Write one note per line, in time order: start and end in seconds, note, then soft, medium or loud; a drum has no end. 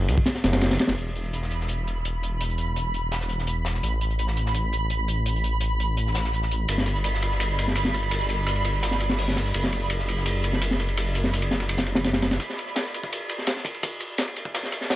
0.08 0.16 C#2 medium
0.08 closed hi-hat medium
0.08 ride medium
0.18 kick loud
0.26 snare loud
0.26 closed hi-hat medium
0.26 ride medium
0.35 snare soft
0.35 snare loud
0.35 closed hi-hat medium
0.44 0.78 F#1 medium
0.44 snare loud
0.44 closed hi-hat medium
0.44 ride medium
0.53 snare loud
0.53 closed hi-hat medium
0.53 ride medium
0.61 snare loud
0.61 closed hi-hat medium
0.61 ride medium
0.71 snare medium
0.71 snare loud
0.71 closed hi-hat medium
0.71 ride medium
0.75 snare medium
0.75 closed hi-hat medium
0.79 snare loud
0.79 closed hi-hat medium
0.79 ride medium
0.88 0.97 F#1 loud
0.88 snare loud
0.88 snare soft
0.88 ride medium
0.97 3.81 E1 medium
0.97 12.41 B5 medium
0.97 closed hi-hat medium
1.15 closed hi-hat medium
1.23 closed hi-hat soft
1.33 closed hi-hat medium
1.42 snare medium
1.50 closed hi-hat medium
1.60 snare soft
1.69 closed hi-hat medium
1.87 closed hi-hat medium
2.05 closed hi-hat medium
2.23 closed hi-hat medium
2.41 closed hi-hat medium
2.50 closed hi-hat soft
2.58 closed hi-hat medium
2.76 closed hi-hat medium
2.94 closed hi-hat medium
3.12 snare medium
3.12 closed hi-hat medium
3.20 snare soft
3.29 closed hi-hat medium
3.38 snare soft
3.47 closed hi-hat medium
3.65 snare loud
3.65 closed hi-hat medium
3.74 snare soft
3.83 6.67 A1 medium
3.83 closed hi-hat medium
4.01 closed hi-hat medium
4.10 closed hi-hat soft
4.19 closed hi-hat medium
4.27 snare soft
4.37 closed hi-hat medium
4.46 snare soft
4.54 closed hi-hat medium
4.73 closed hi-hat medium
4.90 closed hi-hat medium
5.08 closed hi-hat medium
5.26 closed hi-hat medium
5.36 closed hi-hat soft
5.44 closed hi-hat medium
5.61 closed hi-hat medium
5.80 closed hi-hat medium
5.97 closed hi-hat medium
6.07 snare soft
6.15 snare medium
6.15 closed hi-hat medium
6.24 snare soft
6.33 closed hi-hat medium
6.42 snare soft
6.51 closed hi-hat medium
6.68 9.53 G1 medium
6.68 closed hi-hat medium
6.68 ride medium
6.78 snare soft
6.86 closed hi-hat medium
6.86 ride medium
6.96 closed hi-hat soft
7.04 closed hi-hat medium
7.04 ride medium
7.13 snare medium
7.22 closed hi-hat medium
7.22 ride medium
7.31 snare soft
7.40 closed hi-hat medium
7.40 ride medium
7.59 closed hi-hat medium
7.59 ride medium
7.68 snare soft
7.75 closed hi-hat medium
7.75 ride medium
7.85 snare medium
7.94 closed hi-hat medium
7.94 ride medium
8.03 ride soft
8.11 closed hi-hat medium
8.11 ride medium
8.21 closed hi-hat soft
8.29 closed hi-hat medium
8.29 ride medium
8.46 closed hi-hat medium
8.46 ride medium
8.56 ride soft
8.64 closed hi-hat medium
8.64 ride medium
8.83 snare loud
8.83 closed hi-hat medium
8.83 ride medium
8.91 snare soft
9.00 closed hi-hat medium
9.00 ride medium
9.09 snare soft
9.18 closed hi-hat medium
9.18 open hi-hat medium
9.28 snare soft
9.36 snare soft
9.36 snare medium
9.36 closed hi-hat medium
9.36 ride medium
9.46 snare soft
9.54 12.38 F#1 medium
9.54 closed hi-hat medium
9.54 ride medium
9.64 snare medium
9.72 closed hi-hat medium
9.72 ride medium
9.82 closed hi-hat soft
9.90 closed hi-hat medium
9.90 ride medium
9.99 snare medium
10.09 closed hi-hat medium
10.09 ride medium
10.17 snare soft
10.26 closed hi-hat medium
10.26 ride medium
10.44 closed hi-hat medium
10.44 ride medium
10.53 snare soft
10.62 closed hi-hat medium
10.62 ride medium
10.71 snare soft
10.80 closed hi-hat medium
10.80 ride medium
10.89 ride soft
10.97 closed hi-hat medium
10.97 ride medium
11.06 closed hi-hat soft
11.15 closed hi-hat medium
11.15 ride medium
11.24 snare soft
11.33 closed hi-hat medium
11.33 ride medium
11.42 ride medium
11.51 snare soft
11.51 snare loud
11.51 closed hi-hat medium
11.60 snare medium
11.60 ride medium
11.69 closed hi-hat medium
11.69 ride medium
11.78 snare loud
11.78 snare soft
11.78 closed hi-hat medium
11.86 snare soft
11.86 ride medium
11.95 snare loud
11.95 closed hi-hat medium
11.95 ride medium
12.04 snare loud
12.04 snare medium
12.04 closed hi-hat medium
12.04 ride medium
12.13 snare loud
12.13 closed hi-hat medium
12.13 ride medium
12.22 snare medium
12.22 closed hi-hat medium
12.22 ride medium
12.31 snare medium
12.31 snare loud
12.31 closed hi-hat medium
12.31 ride medium
12.40 kick medium
12.40 closed hi-hat medium
12.40 ride medium
12.50 snare medium
12.58 closed hi-hat medium
12.58 ride medium
12.68 closed hi-hat soft
12.76 snare loud
12.76 closed hi-hat medium
12.76 ride medium
12.85 snare medium
12.94 closed hi-hat medium
12.94 ride medium
13.03 kick medium
13.03 snare soft
13.12 closed hi-hat medium
13.12 ride medium
13.29 closed hi-hat medium
13.29 ride medium
13.38 snare soft
13.47 snare loud
13.47 closed hi-hat medium
13.47 ride medium
13.57 snare soft
13.65 kick medium
13.65 closed hi-hat medium
13.65 ride medium
13.74 ride soft
13.83 kick loud
13.83 closed hi-hat medium
13.83 ride medium
13.92 closed hi-hat soft
14.00 closed hi-hat medium
14.00 ride medium
14.18 snare loud
14.18 closed hi-hat medium
14.18 ride medium
14.28 ride soft
14.36 closed hi-hat medium
14.36 ride medium
14.45 kick loud
14.54 snare loud
14.54 closed hi-hat medium
14.54 ride medium
14.63 snare soft
14.72 closed hi-hat medium
14.72 ride medium
14.81 snare soft
14.90 snare loud
14.90 closed hi-hat medium
14.90 open hi-hat medium